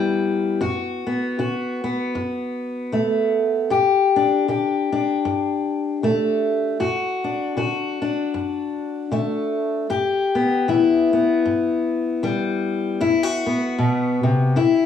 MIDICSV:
0, 0, Header, 1, 2, 480
1, 0, Start_track
1, 0, Tempo, 775194
1, 373, Time_signature, 4, 2, 24, 8
1, 9200, End_track
2, 0, Start_track
2, 0, Title_t, "Steel-string acoustic guitar"
2, 0, Program_c, 0, 25
2, 0, Note_on_c, 0, 52, 52
2, 0, Note_on_c, 0, 55, 50
2, 0, Note_on_c, 0, 59, 49
2, 0, Note_on_c, 0, 64, 47
2, 336, Note_off_c, 0, 52, 0
2, 375, Note_on_c, 0, 42, 66
2, 378, Note_off_c, 0, 55, 0
2, 378, Note_off_c, 0, 64, 0
2, 380, Note_on_c, 0, 66, 62
2, 651, Note_off_c, 0, 59, 0
2, 660, Note_on_c, 0, 59, 44
2, 813, Note_off_c, 0, 42, 0
2, 856, Note_off_c, 0, 66, 0
2, 859, Note_on_c, 0, 50, 51
2, 863, Note_on_c, 0, 66, 48
2, 1130, Note_off_c, 0, 59, 0
2, 1137, Note_on_c, 0, 59, 50
2, 1294, Note_off_c, 0, 50, 0
2, 1331, Note_on_c, 0, 42, 52
2, 1770, Note_off_c, 0, 42, 0
2, 1810, Note_on_c, 0, 50, 48
2, 1814, Note_on_c, 0, 57, 43
2, 2250, Note_off_c, 0, 50, 0
2, 2272, Note_off_c, 0, 66, 0
2, 2293, Note_on_c, 0, 43, 63
2, 2296, Note_off_c, 0, 59, 0
2, 2298, Note_on_c, 0, 67, 60
2, 2312, Note_off_c, 0, 57, 0
2, 2578, Note_on_c, 0, 62, 43
2, 2731, Note_off_c, 0, 43, 0
2, 2772, Note_off_c, 0, 67, 0
2, 2777, Note_on_c, 0, 50, 48
2, 2781, Note_on_c, 0, 67, 46
2, 3047, Note_off_c, 0, 62, 0
2, 3050, Note_on_c, 0, 62, 47
2, 3213, Note_off_c, 0, 50, 0
2, 3252, Note_on_c, 0, 43, 55
2, 3690, Note_off_c, 0, 43, 0
2, 3735, Note_on_c, 0, 50, 51
2, 3740, Note_on_c, 0, 57, 51
2, 4172, Note_off_c, 0, 50, 0
2, 4188, Note_off_c, 0, 62, 0
2, 4190, Note_off_c, 0, 67, 0
2, 4191, Note_off_c, 0, 57, 0
2, 4210, Note_on_c, 0, 42, 69
2, 4213, Note_on_c, 0, 66, 60
2, 4485, Note_on_c, 0, 62, 46
2, 4649, Note_off_c, 0, 42, 0
2, 4683, Note_off_c, 0, 66, 0
2, 4686, Note_on_c, 0, 50, 51
2, 4690, Note_on_c, 0, 66, 52
2, 4957, Note_off_c, 0, 62, 0
2, 4964, Note_on_c, 0, 62, 48
2, 5127, Note_off_c, 0, 50, 0
2, 5165, Note_on_c, 0, 42, 55
2, 5607, Note_off_c, 0, 42, 0
2, 5644, Note_on_c, 0, 50, 55
2, 5650, Note_on_c, 0, 57, 52
2, 6087, Note_off_c, 0, 50, 0
2, 6106, Note_off_c, 0, 57, 0
2, 6106, Note_off_c, 0, 62, 0
2, 6106, Note_off_c, 0, 66, 0
2, 6128, Note_on_c, 0, 43, 69
2, 6131, Note_on_c, 0, 67, 68
2, 6409, Note_on_c, 0, 59, 47
2, 6569, Note_off_c, 0, 43, 0
2, 6612, Note_off_c, 0, 67, 0
2, 6614, Note_on_c, 0, 52, 54
2, 6619, Note_on_c, 0, 64, 53
2, 6884, Note_off_c, 0, 59, 0
2, 6892, Note_on_c, 0, 59, 48
2, 7053, Note_off_c, 0, 52, 0
2, 7093, Note_on_c, 0, 43, 53
2, 7533, Note_off_c, 0, 43, 0
2, 7572, Note_on_c, 0, 52, 57
2, 7577, Note_on_c, 0, 55, 54
2, 8013, Note_off_c, 0, 52, 0
2, 8047, Note_off_c, 0, 64, 0
2, 8053, Note_on_c, 0, 42, 68
2, 8056, Note_off_c, 0, 55, 0
2, 8056, Note_on_c, 0, 64, 68
2, 8193, Note_off_c, 0, 64, 0
2, 8193, Note_on_c, 0, 66, 53
2, 8330, Note_off_c, 0, 59, 0
2, 8337, Note_on_c, 0, 59, 48
2, 8494, Note_off_c, 0, 42, 0
2, 8535, Note_on_c, 0, 47, 58
2, 8810, Note_off_c, 0, 47, 0
2, 8813, Note_on_c, 0, 48, 52
2, 9016, Note_on_c, 0, 50, 65
2, 9017, Note_off_c, 0, 66, 0
2, 9018, Note_off_c, 0, 48, 0
2, 9020, Note_on_c, 0, 64, 56
2, 9021, Note_off_c, 0, 59, 0
2, 9200, Note_off_c, 0, 50, 0
2, 9200, Note_off_c, 0, 64, 0
2, 9200, End_track
0, 0, End_of_file